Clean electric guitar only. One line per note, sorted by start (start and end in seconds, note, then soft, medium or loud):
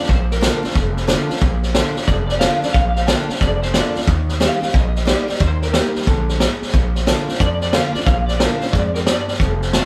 0.10 0.31 C5 medium
0.32 0.62 A#4 medium
1.75 2.06 C5 medium
2.07 2.13 D5 medium
2.28 2.39 D5 loud
2.39 2.60 F5 loud
2.60 2.72 D5 medium
2.73 2.93 F5 loud
2.95 3.07 F5 medium
3.07 3.28 G5 loud
3.28 3.41 F5 loud
3.41 3.61 D5 loud
3.62 3.73 C5 loud
3.74 4.00 D5 medium
4.43 4.76 F5 medium
4.76 5.06 D#5 loud
5.09 5.43 D5 medium
5.42 5.62 C5 medium
5.62 5.93 A#4 medium
7.08 7.39 C5 medium
7.40 7.61 D5 loud
7.62 7.74 D5 loud
7.74 7.94 F5 loud
7.94 8.06 D5 loud
8.06 8.26 F5 loud
8.27 8.40 D5 medium
8.39 8.59 A#4 medium
8.59 8.73 C5 medium
8.72 8.95 D5 medium
8.94 8.99 A#4 loud
9.07 9.32 D5 medium
9.74 9.85 A5 loud